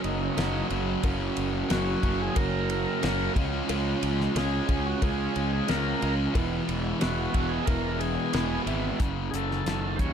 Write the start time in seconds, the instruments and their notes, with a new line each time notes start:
Already playing: overdriven electric guitar F#2 C#3 F#3 A#3 C#4 F#4
0.04 fingered electric bass F#1, tonewheel organ D#4, ride
0.37 fingered electric bass F#1, overdriven electric guitar F#2 C#3 F#3 A#3 C#4 F#4, snare, ride, cowbell
0.70 fingered electric bass F#1, overdriven electric guitar F#2 C#3 F#3 A#3 C#4 F#4, ride
1.03 fingered electric bass F#1, overdriven electric guitar F#2 C#3 F#3 A#3 C#4 F#4, kick, ride, cowbell
1.37 fingered electric bass F#1, ride
1.69 fingered electric bass F#1, overdriven electric guitar F#2 C#3 F#3 A#3 C#4 F#4, tonewheel organ F#4, snare, ride, cowbell
2.03 fingered electric bass F#1, overdriven electric guitar F#2 C#3 F#3 A#3 C#4 F#4, kick, ride
2.22 tonewheel organ G#4
2.36 fingered electric bass F#1, overdriven electric guitar F#2 C#3 F#3 A#3 C#4 F#4, tonewheel organ A#4, kick, ride, cowbell
2.70 tonewheel organ A#4, ride
3.02 fingered electric bass F#1, overdriven electric guitar F#2 C#3 F#3 A#3 C#4 F#4, snare, ride, cowbell
3.36 fingered electric bass C#2, overdriven electric guitar C#3 F3 G#3 C#4 F4, kick, ride
3.69 fingered electric bass C#2, overdriven electric guitar C#3 G#3 C#4 F4, ride, cowbell
4.03 fingered electric bass C#2, ride
4.20 snare
4.35 fingered electric bass C#2, overdriven electric guitar C#3 F3 G#3 C#4 F4, tonewheel organ G#4, snare, ride, cowbell
4.68 fingered electric bass C#2, overdriven electric guitar C#3 G#3 C#4 F4, kick, ride
4.86 tonewheel organ F#4
5.01 fingered electric bass C#2, overdriven electric guitar C#3 G#3 C#4 F4, tonewheel organ G#4, kick, ride, cowbell
5.34 fingered electric bass C#2, overdriven electric guitar C#3 F3 G#3 C#4, ride
5.53 tonewheel organ G#4
5.68 fingered electric bass C#2, overdriven electric guitar C#3 G#3 C#4 F4, tonewheel organ A#4, snare, ride, cowbell
6.00 fingered electric bass C#2, overdriven electric guitar C#3 G#3 C#4 F4, ride
6.34 fingered electric bass E1, overdriven electric guitar E2 B2 E3 G#3 B3 E4, kick, ride, cowbell
6.68 fingered electric bass E1, ride
7.00 fingered electric bass E1, overdriven electric guitar E2 B2 E3 G#3 B3 E4, tonewheel organ F#4, snare, ride, cowbell
7.34 fingered electric bass E1, overdriven electric guitar E2 B2 E3 G#3 B3 E4, kick, ride
7.49 tonewheel organ G#4
7.66 fingered electric bass E1, overdriven electric guitar E2 B2 E3 G#3 B3 E4, tonewheel organ A#4, kick, ride, cowbell
7.99 tonewheel organ G#4, ride
8.33 fingered electric bass E1, overdriven electric guitar E2 B2 E3 G#3 B3 E4, snare, ride, cowbell
8.66 fingered electric bass G#1, overdriven electric guitar E2 B2 E3 G#3 B3 E4, ride
8.99 fingered electric bass F#1, overdriven electric guitar F#2 C#3, kick, closed hi-hat
9.31 fingered electric bass F#1, overdriven electric guitar F#2 C#3, tonewheel organ G#4, closed hi-hat
9.35 tonewheel organ A4
9.51 snare
9.66 fingered electric bass F#1, overdriven electric guitar F#2 D#3, snare, closed hi-hat
9.96 fingered electric bass D#2, overdriven electric guitar F#2 C#3, tonewheel organ C5, kick, closed hi-hat
10.01 tonewheel organ C#5